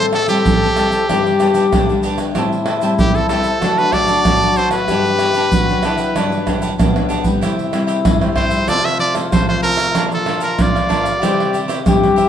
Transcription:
Already playing: A2 G3 C4 E4 G4 A4 C5 E5 A5
0.12 G4 A4 C5 E5 A5, pandeiro, tamborim
0.28 G3 C4 E4 G4 C5 E5 A5, pandeiro, shaker
0.46 E3, pandeiro, shaker, surdo
0.63 C5 E5 A5, pandeiro, shaker
0.76 G3 C4 E4 G4 C5 E5 A5, pandeiro, tamborim, shaker
0.92 C5 E5 A5, pandeiro, shaker
1.09 G2 G3 B3 D4 G4 B4 D5, pandeiro, tamborim, shaker, surdo
1.26 pandeiro, shaker
1.40 G3 B3 D4 G4 B4 D5, pandeiro, tamborim, shaker
1.54 D4 G4 B4 D5, pandeiro, shaker
1.73 D3 D4 G4 B4 D5, pandeiro, tamborim, shaker, surdo
1.89 G3 B3 D4, pandeiro, shaker
2.03 D4 G4 B4 D5, pandeiro, shaker
2.18 G4 B4 D5, pandeiro, tamborim, shaker
2.35 A2 G3 C4 E4 G4 C5 E5 A5, pandeiro, tamborim, shaker, surdo
2.53 pandeiro, shaker
2.66 G4 C5 E5 A5, pandeiro, tamborim
2.81 G3 C4 E4 G4 C5 E5 A5, pandeiro, shaker
2.99 E3 G4, pandeiro, shaker, surdo
3.15 A4 C5 E5 A5, pandeiro, shaker
3.29 G3 C4 E4 G4 A4 C5 E5 A5, pandeiro, tamborim, shaker
3.43 A5, pandeiro, shaker
3.48 C5 E5
3.62 D3 F#3 A3 D4 F#4 A4 D5 F#5, pandeiro, tamborim, shaker, surdo
3.78 B4, pandeiro, shaker
3.92 F#3 A3 D4 A4 D5 F#5, pandeiro, tamborim, surdo
4.08 D4 A4 D5 F#5, pandeiro, shaker
4.25 A2 D4 A4 D5 F#5, pandeiro, tamborim, shaker, surdo
4.42 F#3 A3 D4, pandeiro, shaker
4.56 D4 A4 C5 D5 F#5, pandeiro, shaker
4.71 B4 D5 F#5, pandeiro, tamborim, shaker
4.75 A4
4.88 G2 F#3 B3 D4 G4 B4, pandeiro, tamborim, shaker, surdo
4.93 F#5
5.05 pandeiro, shaker
5.19 B3 D4 G4 B4, pandeiro, tamborim, shaker
5.23 F#5
5.34 D4 G4 B4 F#5, pandeiro, shaker
5.52 D3 F#4, pandeiro, shaker, surdo
5.69 F#3 B3 D4 G4 B4 F#5, pandeiro, shaker
5.83 D4 E4 G4 B4, pandeiro, tamborim, shaker
5.87 F#5
5.98 G4 B4 F#5, pandeiro, shaker
6.16 G2 F#3 B3 D4 G4 B4 F#5, pandeiro, tamborim, shaker, surdo
6.32 pandeiro, shaker
6.47 F#3 B3 D4 G4 B4 F#5, pandeiro, tamborim, shaker, surdo
6.62 D4 G4 B4 F#5, pandeiro, shaker
6.78 D3 B3 D4 G4 B4 F#5, pandeiro, tamborim, shaker, surdo
6.96 F#3 B3 D4, pandeiro, tamborim, shaker
7.09 D4 G4 B4 F#5, pandeiro, shaker
7.23 G3 C4 E4 G4 B4 F#5, pandeiro, shaker, surdo
7.41 C3 E4 G4 C5 E5, pandeiro, tamborim, shaker, surdo
7.59 pandeiro, shaker
7.72 G3 C4 E4 G4 C5 E5, pandeiro, tamborim, shaker
7.87 E4 G4 C5 E5, pandeiro, shaker
8.05 G2, pandeiro, tamborim, shaker, surdo
8.21 G3 C4 E4 G4 C5 E5, pandeiro, tamborim, shaker
8.36 E4 G4 C5 E5, pandeiro, tamborim, surdo
8.50 F3 A3 G4 C5 E5, pandeiro, shaker
8.68 C3 F4 A4 C5 D5 E5, pandeiro, tamborim, shaker, surdo
8.85 E5, pandeiro, tamborim, shaker
8.99 F4 A4 C5 D5 E5, pandeiro
9.15 F3 A3 E4 F4 A4 C5 E5, pandeiro, tamborim, shaker
9.32 C3 F4 A4 C5 E5, pandeiro, tamborim, shaker, surdo
9.49 F3 A3 C5, pandeiro, tamborim, shaker
9.62 F4 A4 A#4 C5 E5, pandeiro
9.77 A4 C5 E5, pandeiro, tamborim, shaker
9.95 A#2 F3 A#3 D4 F4 A#4 D5 F5, pandeiro, tamborim, shaker, surdo
10.11 A4, pandeiro, shaker
10.26 F3 A#3 D4 A#4 D5 F5, pandeiro, tamborim
10.41 D4 A#4 D5 F5, pandeiro, shaker
10.59 F3 D5, pandeiro, tamborim, shaker, surdo
10.75 A#4 D5 F5, pandeiro, tamborim, shaker
10.89 F3 A#3 D4 A#4 D5 F5, pandeiro, tamborim, surdo
11.03 A#4 D5 F5, pandeiro, shaker
11.22 C3 G3 C4 E4 G4 C5 E5, pandeiro, tamborim, shaker, surdo
11.40 pandeiro, tamborim, shaker
11.53 E4 G4 C5 E5, pandeiro, shaker
11.68 E4 G4 C5 E5, pandeiro, tamborim, shaker
11.86 G2 G3 C4 E4 G4 C5 E5, pandeiro, tamborim, shaker, surdo
12.03 pandeiro, tamborim, shaker
12.16 E4 G4 C5 E5, pandeiro, shaker

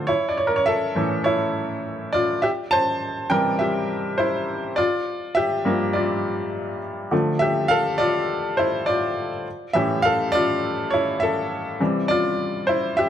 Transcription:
Already playing: A3
0.07 E4 C#5
0.29 D5
0.37 C#5
0.47 A#4
0.56 C#5
0.66 A4 E5
0.95 A2 E3 C#4
1.24 E4 C#5
2.13 F4 D5
2.42 G4 E5
2.71 C5 A5
3.30 C3 E3 G3 A#4 G5
3.59 G4 E5
4.18 E4 C5
4.76 F4 D5
5.35 G4 E5
5.65 G2 F3 A#3
5.93 F4 D5
7.11 D3 F3 A3
7.39 G4 E5
7.68 A4 F5
7.98 F4 D5
8.57 E4 C5
8.86 F4 D5
9.73 A2 E3 C#4 G4 E5
10.02 A4 F5
10.32 F4 D5
10.90 E4 C#5
11.20 A4 E5
11.80 C3 E3 G3
12.08 F4 D5
12.67 E4 C5
12.97 G4 E5

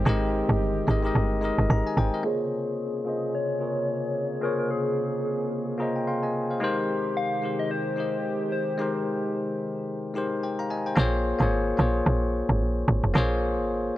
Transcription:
Already playing: D#3 G#3 C4 D#4 G4 A#4 C5 D#5
0.05 G#1 G#3 D#4 G4 A#4 D#5
0.49 G1
0.87 G#1 G#3 D#4 G4 A#4 D#5
1.03 G#3 D#4 G4 A#4 D#5
1.15 G1
1.41 G#3 D#4 G4 A#4 D#5
1.58 G1
1.70 G#1 A#5
1.87 D#5 G#5
1.97 G#1 C5 G5
2.14 A#4 D#5
2.23 C3 C#3 A#3 F4 G#4 C5 C#5
3.05 A#3 F4 G#4 C5
3.09 D#5
3.35 C#5
3.59 A#3 F4 G#4 A#4 C#5
4.41 A#3 F4 G#4 A#4 C5 C#5
4.59 A#4
4.71 G#4
5.78 A#3 F4 G#4 C5 A#5
5.82 D#5
5.96 G5
6.07 F5 G5 C6
6.23 D#5 G#5
6.51 C5 F5
6.60 D#3 G#3 D#4 G4 A#4 C5
7.17 F5
7.42 G#3 D#4 G4 A#4 C5
7.59 D#5
7.71 C5
7.96 G#3 D#4 G4 A#4 D#5
8.52 C5
8.78 G#3 D#4 G4 A#4 C5
10.14 G#3 D#4 G4 A#4 C5
10.43 C5 G5
10.59 F5 A#5
10.70 D#5 G#5
10.86 C5 G5
10.96 A#1 A#3 F4 G#4 C5 C#5
11.39 G#1 A#3 F4 G#4 C5 C#5
11.77 A#1 A#3 F4 G#4 C5
11.81 C#5
12.06 A#1
12.49 G#1
12.61 A#1
12.88 G#1
13.04 F1
13.14 A#1 A#3 F4 G#4 C5 C#5
13.58 G#1

